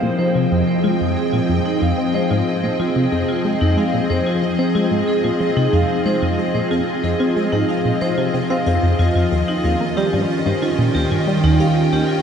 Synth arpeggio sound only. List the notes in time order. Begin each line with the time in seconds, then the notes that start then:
0.03 A#2
0.19 F3
0.35 C3
0.52 F2
0.84 G#3
1.00 F2
1.17 G#3
1.33 A#2
1.49 F2
1.82 F2
1.98 C4
2.14 G#3
2.31 G#2
2.63 A#2
2.80 F3
2.96 C3
3.12 F2
3.45 G#3
3.61 F2
3.77 G#3
3.94 A#2
4.10 F2
4.43 F2
4.59 C4
4.75 G#3
4.91 G#2
5.24 A#2
5.40 F3
5.57 C3
5.73 F2
6.06 G#3
6.22 F2
6.38 G#3
6.54 A#2
6.71 F2
7.04 F2
7.20 C4
7.36 G#3
7.53 G#2
7.85 A#2
8.02 F3
8.18 C3
8.34 C3
8.50 C4
8.67 F2
8.83 F2
8.99 F2
9.15 F2
9.32 D#2
9.64 D#2
9.81 A#3
9.97 G3
10.13 G2
10.46 G2
10.62 D#3
10.79 A#2
10.95 D#2
11.11 G2
11.27 G3
11.44 D#2
11.60 G3
11.93 D#2